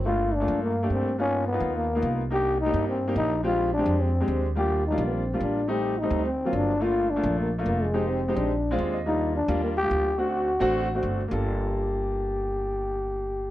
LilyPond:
<<
  \new Staff \with { instrumentName = "Grand piano" } { \time 4/4 \key g \minor \tempo 4 = 213 << { r1 | r1 | r1 | r1 |
r1 | r1 | r1 | r2. f''8 ees''8 |
r1 | r1 | r1 | r1 | } \\ { <a bes d' f'>4 r16 <a bes d' f'>4 r8 <a bes d' g'>8. r8 | <ais b dis' f'>4 r16 <ais b dis' f'>4 r8 <ais b dis' f'>8. r8 | <bes d' ees' g'>4 r16 <bes d' ees' g'>4 r8 <bes d' ees' g'>8. r8 | <aes c' d' g'>4 r16 <aes c' d' g'>4 r8 <aes c' d' g'>8. r8 |
<g bes d' f'>4 r16 <g bes d' f'>4 r8 <g bes d' f'>8. r8 | <g a c' ees'>4 r16 <g a c' ees'>8. r8. <fis ais c' eis'>8. r8 | <a bes d' f'>4 r16 <a bes d' f'>4 r8 <a bes d' f'>8. r8 | <aes c' ees' g'>4 r16 <aes c' ees' g'>8. r8. <aes c' d' f'>8. r8 |
<g bes d' f'>4 r8 <g bes d' f'>4 r16 <g bes d' f'>8. r8 | <a c' d' fis'>4 r8 <a c' d' fis'>4 r16 <a c' d' fis'>8. r8 | <bes d' f' a'>1~ | <bes d' f' a'>1 | } >> }
  \new Staff \with { instrumentName = "Trombone" } { \time 4/4 \key g \minor f'4 d'4 bes4 c'4 | cis'4 b4 ais4. r8 | g'4 ees'4 c'4 ees'4 | f'4 d'4 c'4. r8 |
g'4 ees'8. b16 c'4 d'4 | g'4 ees'4 c'4 d'4 | f'4 d'4 bes8 r8 bes8 aes8~ | aes8 c'4 d'4. r4 |
ees'4 d'4 bes8 g'4. | fis'2.~ fis'8 r8 | g'1~ | g'1 | }
  \new Staff \with { instrumentName = "Upright bass" } { \clef bass \time 4/4 \key g \minor g,,4. g,4. g,4~ | g,4. dis,4. c,4~ | c,4. g,4. bes,,4~ | bes,,4. f,4. ees,4~ |
ees,4. bes,,4. a,,4~ | a,,4. d,4. g,,4~ | g,,4. bes,,4. f,,4~ | f,,4. bes,,4. ees,4~ |
ees,4. ees,4. d,4~ | d,4. a,,4. g,,4 | g,,1~ | g,,1 | }
>>